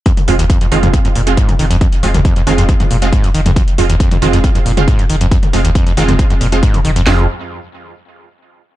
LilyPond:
<<
  \new Staff \with { instrumentName = "Synth stab" } { \time 4/4 \key f \minor \tempo 4 = 137 r8 <aes c' f'>16 r8. <aes c' f'>4~ <aes c' f'>16 <aes c' f'>16 r4 | r8 <aes c' f'>16 r8. <aes c' f'>4~ <aes c' f'>16 <aes c' f'>16 r4 | r8 <aes c' f'>16 r8. <aes c' f'>4~ <aes c' f'>16 <aes c' f'>16 r4 | r8 <aes c' f'>16 r8. <aes c' f'>4~ <aes c' f'>16 <aes c' f'>16 r4 |
<aes c' f'>8 r2. r8 | }
  \new Staff \with { instrumentName = "Acid bass" } { \clef bass \time 4/4 \key f \minor f,16 r16 f,16 ees,16 f,16 f,16 ees16 f,16 f,16 ges,16 bes,16 r16 aes,16 f,16 ees16 f,16 | f,16 r16 f,16 ees,16 f,16 f,16 ees16 f,16 f,16 ges,16 bes,16 r16 aes,16 f,16 ees16 f,16 | f,16 r16 f,16 ees,16 f,16 f,16 ees16 f,16 f,16 ges,16 bes,16 r16 aes,16 f,16 ees16 f,16 | f,16 r16 f,16 ees,16 f,16 f,16 ees16 f,16 f,16 ges,16 bes,16 r16 aes,16 f,16 ees16 f,16 |
f,8 r2. r8 | }
  \new Staff \with { instrumentName = "Sub bass" } { \clef bass \time 4/4 \key f \minor r8 f,,16 f,,16 r8 f,,16 f,,16 r8 f,,16 f,,16 r8 f,,16 f,,16 | r8 f,,16 f,,16 r8 f,,16 f,,16 r8 f,,16 f,,16 r8 f,,16 f,,16 | r8 f,,16 f,,16 r8 f,,16 f,,16 r8 f,,16 f,,16 r8 f,,16 f,,16 | r8 f,,16 f,,16 r8 f,,16 f,,16 r8 f,,16 f,,16 r8 f,,16 f,,16 |
f,,8 r2. r8 | }
  \new DrumStaff \with { instrumentName = "Drums" } \drummode { \time 4/4 <hh bd>16 <hh toml>16 hho16 hh16 <hh bd>16 hh16 hho16 <hh toml>16 <hh bd>16 hh16 hho16 hh16 <hh bd>16 <hh toml>16 hho16 hh16 | <hh bd>16 hh16 hho16 <hh toml>16 <hh bd>16 hh16 hho16 hh16 <hh bd>16 <hh toml>16 hho16 hh16 <hh bd>16 hh16 hho16 <hh toml>16 | <hh bd>16 hh16 hho16 hh16 <hh bd>16 <hh toml>16 hho16 hh16 <hh bd>16 hh16 hho16 <hh toml>16 <hh bd>16 hh16 hho16 hh16 | <hh bd>16 <hh toml>16 hho16 hh16 <hh bd>16 hh16 hho16 <hh toml>16 <hh bd>16 hh16 hho16 hh16 <hh bd>16 <hh toml>16 hho16 hh16 |
sn4 r4 r4 r4 | }
>>